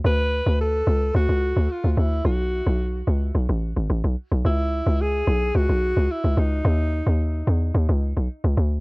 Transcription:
<<
  \new Staff \with { instrumentName = "Alto saxophone" } { \time 4/4 \key b \dorian \tempo 4 = 109 b'4 a'4 fis'4 eis'16. eis'32 e'8 | fis'4. r2 r8 | e'4 gis'4 fis'4 e'8 dis'8~ | dis'4. r2 r8 | }
  \new Staff \with { instrumentName = "Log drum bass" } { \clef bass \time 4/4 \key b \dorian d,8. d,8. cis,8 d,16 cis,8 d,16 r16 d,16 d,8 | b,,8. b,,8. cis,8 b,,16 a,,8 gis,,16 a,,16 b,,16 r16 b,,16 | cis,8. cis,8. b,,8 cis,16 b,,8 cis,16 r16 cis,16 cis,8 | dis,8. dis,8. e,8 dis,16 cis,8 b,,16 r16 cis,16 d,8 | }
>>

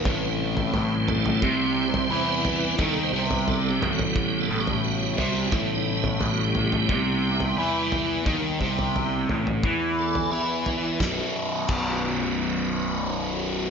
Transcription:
<<
  \new Staff \with { instrumentName = "Tonewheel organ" } { \time 4/4 \tempo 4 = 88 b'8 r4 a'8 \tuplet 3/2 { g'4 c''8~ c''8 b'4 } | \tuplet 3/2 { a'8 c''8 b'8 a'8 g'8 fis'8 g'8 a'8 g'8 } fis'4 | \tuplet 3/2 { e'8 dis'8 e'8 fis'8 g'4~ } g'4 r4 | r2 r8 a'8 e''4 |
<fis b dis' fis' b'>1 | }
  \new Staff \with { instrumentName = "Tonewheel organ" } { \clef bass \time 4/4 <c g c'>1 | <c g b>1 | <c g b>1 | <c g b>4. r2 r8 |
r1 | }
  \new Staff \with { instrumentName = "Distorted electric guitar" } { \clef bass \time 4/4 a,4 a,4 c4 e4 | dis8 c4 a,4 a,4 c8 | a,4 a,4 c4 e4 | dis8 c4 a,8 e4 e4 |
<b,, fis, b,>8 r8 <b,, fis, b,>2. | }
  \new Staff \with { instrumentName = "Picked electric bass" } { \clef bass \time 4/4 a,,4 a,,4 c,4 e,4 | dis,8 c,4 a,,4 a,,4 c,8 | a,,4 a,,4 c,4 e,4 | dis,8 c,4 a,,8 e,4 e,4 |
b,,,8 r8 b,,,2. | }
  \new DrumStaff \with { instrumentName = "Drums" } \drummode { \time 4/4 <bd tomfh>8. tomfh16 tomfh8 <tomfh toml>16 tomfh16 bd8. tomfh16 r8 tomfh8 | <bd tomfh>8. tomfh16 tomfh8 <tomfh toml>16 tomfh16 bd8. tomfh16 r8 tomfh8 | <bd tomfh>8. tomfh16 tomfh8 tomfh16 tomfh16 bd8. tomfh16 r8 tomfh8 | <bd tomfh>8 bd16 tomfh16 tomfh8 tomfh16 tomfh16 bd8. tomfh16 r8 tomfh8 |
<bd sn>4 <cymc bd>4 r4 r4 | }
>>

